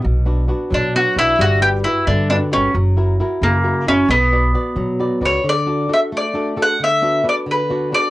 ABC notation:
X:1
M:6/8
L:1/8
Q:3/8=89
K:Bm
V:1 name="Mandolin"
z3 D F E | F G E D D C | z3 ^A,2 C | B,4- B, c |
[K:D] d2 e d2 f | e2 d B2 d |]
V:2 name="Nylon-string guitar"
B,, [B,DF] [B,DF] F, [B,DF] [B,DF] | G, [FGB] [FGB] D, [FGB] [FGB] | F, [EF^A] [EFA] C, [EFA] [EFA] | B, [FBd] [FBd] F, [FBd] [FBd] |
[K:D] D, [DFA] [DFA] A, [DFA] [DFA] | D, [B,DF] [B,DF] D, [B,DF] [B,DF] |]
V:3 name="Upright bass" clef=bass
B,,,3 B,,2 B,,, | G,,,3 G,,2 G,,, | F,,,3 F,,2 F,,, | B,,,3 B,,2 C,, |
[K:D] z6 | z6 |]